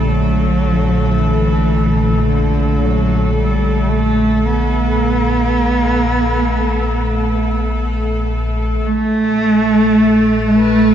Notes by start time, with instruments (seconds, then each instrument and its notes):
Already playing: synth drone A#1 D3, cello G3, cello section A3 A4
0.09 cello F#3
1.18 cello E3
2.28 cello D3
2.82 cello F#3
3.37 cello G3
3.89 cello A3
4.45 cello B3
8.83 synth drone A#1 A#2, cello A3
9.25 cello section A3
10.46 cello A3
10.56 cello section B4